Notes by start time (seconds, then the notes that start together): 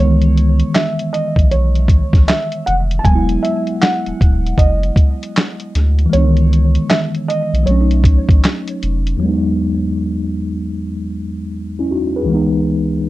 Already playing: E3 G#3 C#5
0.00 C#2 B3
0.05 D#3
0.22 closed hi-hat
0.37 closed hi-hat
0.60 closed hi-hat
0.75 E5, snare, clap, closed hi-hat
0.99 closed hi-hat
1.13 D#5, closed hi-hat
1.36 B1, kick, closed hi-hat
1.51 C#5, closed hi-hat
1.75 closed hi-hat
1.88 kick, closed hi-hat
2.13 B1, kick, snare, closed hi-hat
2.28 E5, snare, clap, closed hi-hat
2.52 closed hi-hat
2.66 F1 F#5, closed hi-hat
2.91 closed hi-hat
2.99 A5
3.04 E1 F#3 G#3 G#5, kick, closed hi-hat
3.11 B3 E4
3.29 closed hi-hat
3.43 E5, closed hi-hat
3.67 closed hi-hat
3.81 F#5, snare, clap, closed hi-hat
4.06 D#1, closed hi-hat
4.21 D#1, kick, closed hi-hat
4.47 closed hi-hat
4.58 F#1 D#5, kick, closed hi-hat
4.83 closed hi-hat
4.96 kick, closed hi-hat
5.23 closed hi-hat
5.36 snare, clap, closed hi-hat
5.60 closed hi-hat
5.75 D2, snare, closed hi-hat
5.99 closed hi-hat
6.06 E3 G#3
6.13 C#2 B3 C#5, closed hi-hat
6.17 D4
6.24 D#3
6.37 closed hi-hat
6.53 closed hi-hat
6.75 closed hi-hat
6.90 E5, snare, clap, closed hi-hat
7.15 closed hi-hat
7.28 D#5, closed hi-hat
7.53 B1, closed hi-hat
7.63 F#3 A3 C#5, closed hi-hat
7.68 B1 C#4
7.74 D4
7.81 D#4
7.91 closed hi-hat
8.04 kick, closed hi-hat
8.29 A1, kick, closed hi-hat
8.44 snare, clap, closed hi-hat
8.68 closed hi-hat
8.83 F1, closed hi-hat
9.07 closed hi-hat
9.17 E2 F#3
9.23 G#3 B3
9.28 D#4
11.79 C#4 E4
11.91 D#4 F#4
12.16 G#4 B4
12.23 C#2 E3
12.29 G#3 B3
12.34 D#4